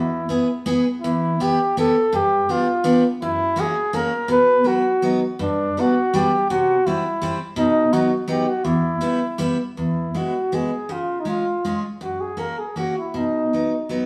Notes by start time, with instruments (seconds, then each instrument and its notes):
Already playing: steel-string acoustic guitar E2, flugelhorn E4
0.29 steel-string acoustic guitar B3 E4 G#4
0.66 steel-string acoustic guitar B3 E4 G#4
1.01 steel-string acoustic guitar E2, flugelhorn E4
1.40 steel-string acoustic guitar B3 E4 G4, flugelhorn G4
1.77 steel-string acoustic guitar B3 E4 G4, flugelhorn A4
2.13 steel-string acoustic guitar G2, flugelhorn G4
2.49 steel-string acoustic guitar B3 D4 G4, flugelhorn F4
2.84 steel-string acoustic guitar B3 D4 G4
3.22 steel-string acoustic guitar F#2, flugelhorn E4
3.56 steel-string acoustic guitar A#3 C#4 F#4
3.60 flugelhorn G#4
3.93 steel-string acoustic guitar A#3 C#4 F#4, flugelhorn A#4
4.28 steel-string acoustic guitar B2, flugelhorn B4
4.64 steel-string acoustic guitar F#3 B3 E4, flugelhorn F#4
5.02 steel-string acoustic guitar F#3 B3 D#4
5.39 steel-string acoustic guitar G2, flugelhorn D4
5.77 steel-string acoustic guitar G3 B3 D4, flugelhorn F#4
6.14 steel-string acoustic guitar G3 B3 D4, flugelhorn G4
6.50 steel-string acoustic guitar C3, flugelhorn F#4
6.86 steel-string acoustic guitar G3 C4 E4, flugelhorn E4
7.22 steel-string acoustic guitar G3 C4 E4
7.56 steel-string acoustic guitar B2, flugelhorn D#4
7.93 steel-string acoustic guitar F#3 B3 D#4, flugelhorn F#4
8.28 steel-string acoustic guitar F#3 B3 D#4, flugelhorn G4
8.49 flugelhorn F#4
8.65 steel-string acoustic guitar E2, flugelhorn E4
9.01 steel-string acoustic guitar G3 B3 E4
9.38 steel-string acoustic guitar G3 B3 E4
9.77 steel-string acoustic guitar E2, flugelhorn E4
10.15 steel-string acoustic guitar G#3 B3 E4, flugelhorn F#4
10.52 steel-string acoustic guitar G#3 B3 E4, flugelhorn G#4
10.89 steel-string acoustic guitar C#3, flugelhorn F4
11.20 flugelhorn D#4
11.25 steel-string acoustic guitar G#3 C#4 F4, flugelhorn F4
11.65 steel-string acoustic guitar G#3 C#4 F4
12.01 steel-string acoustic guitar F#2, flugelhorn F#4
12.20 flugelhorn G#4
12.37 steel-string acoustic guitar A#3 C#4 F#4, flugelhorn A#4
12.59 flugelhorn G#4
12.76 steel-string acoustic guitar A#3 C#4 F#4, flugelhorn F#4
12.99 flugelhorn E4
13.14 steel-string acoustic guitar B2, flugelhorn D#4
13.53 steel-string acoustic guitar F#3 B3 D#4
13.89 steel-string acoustic guitar F#3 B3 D#4